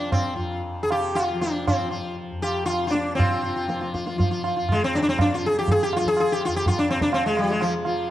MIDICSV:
0, 0, Header, 1, 4, 480
1, 0, Start_track
1, 0, Tempo, 509771
1, 1086, Time_signature, 4, 2, 24, 8
1, 3949, Tempo, 487805
1, 7795, End_track
2, 0, Start_track
2, 0, Title_t, "Sitar"
2, 0, Program_c, 0, 104
2, 0, Note_on_c, 0, 62, 78
2, 113, Note_off_c, 0, 62, 0
2, 117, Note_on_c, 0, 60, 73
2, 334, Note_off_c, 0, 60, 0
2, 338, Note_on_c, 0, 65, 37
2, 573, Note_off_c, 0, 65, 0
2, 781, Note_on_c, 0, 68, 71
2, 838, Note_off_c, 0, 68, 0
2, 863, Note_on_c, 0, 67, 91
2, 1084, Note_on_c, 0, 65, 92
2, 1102, Note_off_c, 0, 67, 0
2, 1327, Note_off_c, 0, 65, 0
2, 1331, Note_on_c, 0, 62, 76
2, 1572, Note_off_c, 0, 62, 0
2, 1576, Note_on_c, 0, 60, 72
2, 1793, Note_off_c, 0, 60, 0
2, 1797, Note_on_c, 0, 65, 40
2, 2026, Note_off_c, 0, 65, 0
2, 2281, Note_on_c, 0, 67, 95
2, 2497, Note_off_c, 0, 67, 0
2, 2501, Note_on_c, 0, 65, 96
2, 2691, Note_off_c, 0, 65, 0
2, 2703, Note_on_c, 0, 65, 65
2, 2736, Note_on_c, 0, 62, 82
2, 2760, Note_off_c, 0, 65, 0
2, 2963, Note_off_c, 0, 62, 0
2, 2967, Note_on_c, 0, 60, 75
2, 2979, Note_on_c, 0, 65, 38
2, 3101, Note_off_c, 0, 65, 0
2, 3112, Note_on_c, 0, 65, 40
2, 3217, Note_off_c, 0, 65, 0
2, 3228, Note_on_c, 0, 65, 39
2, 3340, Note_off_c, 0, 65, 0
2, 3351, Note_on_c, 0, 65, 38
2, 3457, Note_off_c, 0, 65, 0
2, 3469, Note_on_c, 0, 65, 41
2, 3573, Note_off_c, 0, 65, 0
2, 3585, Note_on_c, 0, 65, 38
2, 3657, Note_off_c, 0, 60, 0
2, 3697, Note_off_c, 0, 65, 0
2, 3709, Note_on_c, 0, 65, 41
2, 3813, Note_off_c, 0, 65, 0
2, 3825, Note_on_c, 0, 65, 38
2, 3926, Note_off_c, 0, 65, 0
2, 3937, Note_on_c, 0, 65, 39
2, 4051, Note_off_c, 0, 65, 0
2, 4063, Note_on_c, 0, 65, 42
2, 4176, Note_off_c, 0, 65, 0
2, 4187, Note_on_c, 0, 65, 38
2, 4301, Note_off_c, 0, 65, 0
2, 4313, Note_on_c, 0, 65, 44
2, 4467, Note_on_c, 0, 56, 87
2, 4541, Note_off_c, 0, 65, 0
2, 4577, Note_off_c, 0, 56, 0
2, 4586, Note_on_c, 0, 60, 99
2, 4694, Note_on_c, 0, 62, 94
2, 4698, Note_off_c, 0, 60, 0
2, 4719, Note_off_c, 0, 62, 0
2, 4719, Note_on_c, 0, 60, 82
2, 4745, Note_off_c, 0, 60, 0
2, 4767, Note_on_c, 0, 62, 95
2, 4817, Note_off_c, 0, 62, 0
2, 4829, Note_on_c, 0, 60, 98
2, 4940, Note_off_c, 0, 60, 0
2, 4948, Note_on_c, 0, 62, 100
2, 5060, Note_off_c, 0, 62, 0
2, 5077, Note_on_c, 0, 65, 94
2, 5185, Note_off_c, 0, 65, 0
2, 5197, Note_on_c, 0, 68, 96
2, 5306, Note_off_c, 0, 68, 0
2, 5318, Note_on_c, 0, 67, 99
2, 5426, Note_off_c, 0, 67, 0
2, 5445, Note_on_c, 0, 68, 114
2, 5540, Note_off_c, 0, 68, 0
2, 5558, Note_on_c, 0, 67, 104
2, 5667, Note_off_c, 0, 67, 0
2, 5691, Note_on_c, 0, 65, 98
2, 5793, Note_off_c, 0, 65, 0
2, 5803, Note_on_c, 0, 68, 107
2, 5909, Note_off_c, 0, 68, 0
2, 5924, Note_on_c, 0, 68, 106
2, 6030, Note_off_c, 0, 68, 0
2, 6042, Note_on_c, 0, 67, 99
2, 6148, Note_off_c, 0, 67, 0
2, 6171, Note_on_c, 0, 65, 98
2, 6272, Note_off_c, 0, 65, 0
2, 6281, Note_on_c, 0, 67, 103
2, 6387, Note_off_c, 0, 67, 0
2, 6391, Note_on_c, 0, 65, 100
2, 6500, Note_on_c, 0, 62, 100
2, 6502, Note_off_c, 0, 65, 0
2, 6612, Note_off_c, 0, 62, 0
2, 6616, Note_on_c, 0, 60, 96
2, 6725, Note_off_c, 0, 60, 0
2, 6729, Note_on_c, 0, 62, 96
2, 6845, Note_off_c, 0, 62, 0
2, 6849, Note_on_c, 0, 60, 98
2, 6962, Note_off_c, 0, 60, 0
2, 6966, Note_on_c, 0, 56, 88
2, 7087, Note_off_c, 0, 56, 0
2, 7089, Note_on_c, 0, 55, 85
2, 7207, Note_off_c, 0, 55, 0
2, 7207, Note_on_c, 0, 56, 80
2, 7315, Note_on_c, 0, 53, 83
2, 7325, Note_off_c, 0, 56, 0
2, 7426, Note_off_c, 0, 53, 0
2, 7555, Note_on_c, 0, 65, 42
2, 7773, Note_off_c, 0, 65, 0
2, 7795, End_track
3, 0, Start_track
3, 0, Title_t, "Tanpura"
3, 0, Program_c, 1, 104
3, 0, Note_on_c, 1, 41, 62
3, 0, Note_on_c, 1, 48, 63
3, 0, Note_on_c, 1, 53, 60
3, 332, Note_off_c, 1, 41, 0
3, 336, Note_on_c, 1, 41, 66
3, 805, Note_off_c, 1, 48, 0
3, 808, Note_on_c, 1, 48, 61
3, 1256, Note_off_c, 1, 53, 0
3, 1256, Note_on_c, 1, 53, 62
3, 1714, Note_off_c, 1, 53, 0
3, 1714, Note_on_c, 1, 53, 62
3, 2173, Note_off_c, 1, 41, 0
3, 2177, Note_on_c, 1, 41, 65
3, 2622, Note_off_c, 1, 48, 0
3, 2626, Note_on_c, 1, 48, 61
3, 3008, Note_off_c, 1, 48, 0
3, 3008, Note_on_c, 1, 48, 60
3, 3458, Note_off_c, 1, 53, 0
3, 3458, Note_on_c, 1, 53, 63
3, 3909, Note_off_c, 1, 53, 0
3, 3909, Note_on_c, 1, 53, 65
3, 4362, Note_off_c, 1, 41, 0
3, 4365, Note_on_c, 1, 41, 63
3, 4839, Note_off_c, 1, 48, 0
3, 4839, Note_on_c, 1, 48, 68
3, 5292, Note_off_c, 1, 53, 0
3, 5292, Note_on_c, 1, 53, 66
3, 5740, Note_off_c, 1, 53, 0
3, 5740, Note_on_c, 1, 53, 70
3, 6188, Note_off_c, 1, 41, 0
3, 6192, Note_on_c, 1, 41, 71
3, 6669, Note_off_c, 1, 48, 0
3, 6673, Note_on_c, 1, 48, 73
3, 7122, Note_off_c, 1, 53, 0
3, 7122, Note_on_c, 1, 53, 70
3, 7557, Note_off_c, 1, 53, 0
3, 7557, Note_on_c, 1, 53, 72
3, 7795, Note_off_c, 1, 41, 0
3, 7795, Note_off_c, 1, 48, 0
3, 7795, Note_off_c, 1, 53, 0
3, 7795, End_track
4, 0, Start_track
4, 0, Title_t, "Tabla"
4, 114, Note_on_c, 9, 60, 86
4, 114, Note_on_c, 9, 64, 81
4, 208, Note_off_c, 9, 60, 0
4, 208, Note_off_c, 9, 64, 0
4, 852, Note_on_c, 9, 60, 70
4, 946, Note_off_c, 9, 60, 0
4, 1096, Note_on_c, 9, 60, 74
4, 1190, Note_off_c, 9, 60, 0
4, 1343, Note_on_c, 9, 62, 73
4, 1437, Note_off_c, 9, 62, 0
4, 1577, Note_on_c, 9, 60, 90
4, 1577, Note_on_c, 9, 64, 77
4, 1671, Note_off_c, 9, 60, 0
4, 1671, Note_off_c, 9, 64, 0
4, 2298, Note_on_c, 9, 60, 72
4, 2392, Note_off_c, 9, 60, 0
4, 2543, Note_on_c, 9, 60, 74
4, 2637, Note_off_c, 9, 60, 0
4, 2775, Note_on_c, 9, 62, 71
4, 2869, Note_off_c, 9, 62, 0
4, 3008, Note_on_c, 9, 60, 105
4, 3008, Note_on_c, 9, 64, 98
4, 3102, Note_off_c, 9, 60, 0
4, 3102, Note_off_c, 9, 64, 0
4, 3483, Note_on_c, 9, 62, 76
4, 3577, Note_off_c, 9, 62, 0
4, 3603, Note_on_c, 9, 62, 63
4, 3697, Note_off_c, 9, 62, 0
4, 3715, Note_on_c, 9, 37, 62
4, 3809, Note_off_c, 9, 37, 0
4, 3835, Note_on_c, 9, 62, 64
4, 3929, Note_off_c, 9, 62, 0
4, 3952, Note_on_c, 9, 63, 83
4, 3952, Note_on_c, 9, 64, 75
4, 4050, Note_off_c, 9, 63, 0
4, 4050, Note_off_c, 9, 64, 0
4, 4192, Note_on_c, 9, 60, 65
4, 4290, Note_off_c, 9, 60, 0
4, 4435, Note_on_c, 9, 60, 81
4, 4435, Note_on_c, 9, 64, 77
4, 4533, Note_off_c, 9, 60, 0
4, 4533, Note_off_c, 9, 64, 0
4, 4927, Note_on_c, 9, 60, 84
4, 4927, Note_on_c, 9, 64, 76
4, 5026, Note_off_c, 9, 60, 0
4, 5026, Note_off_c, 9, 64, 0
4, 5410, Note_on_c, 9, 63, 82
4, 5410, Note_on_c, 9, 64, 70
4, 5509, Note_off_c, 9, 63, 0
4, 5509, Note_off_c, 9, 64, 0
4, 5657, Note_on_c, 9, 60, 63
4, 5755, Note_off_c, 9, 60, 0
4, 5781, Note_on_c, 9, 37, 65
4, 5879, Note_off_c, 9, 37, 0
4, 5891, Note_on_c, 9, 60, 85
4, 5989, Note_off_c, 9, 60, 0
4, 6130, Note_on_c, 9, 60, 63
4, 6228, Note_off_c, 9, 60, 0
4, 6376, Note_on_c, 9, 63, 84
4, 6376, Note_on_c, 9, 64, 71
4, 6475, Note_off_c, 9, 63, 0
4, 6475, Note_off_c, 9, 64, 0
4, 6609, Note_on_c, 9, 60, 66
4, 6708, Note_off_c, 9, 60, 0
4, 6724, Note_on_c, 9, 37, 63
4, 6822, Note_off_c, 9, 37, 0
4, 6836, Note_on_c, 9, 60, 89
4, 6935, Note_off_c, 9, 60, 0
4, 7073, Note_on_c, 9, 60, 65
4, 7172, Note_off_c, 9, 60, 0
4, 7308, Note_on_c, 9, 60, 78
4, 7407, Note_off_c, 9, 60, 0
4, 7546, Note_on_c, 9, 60, 67
4, 7645, Note_off_c, 9, 60, 0
4, 7795, End_track
0, 0, End_of_file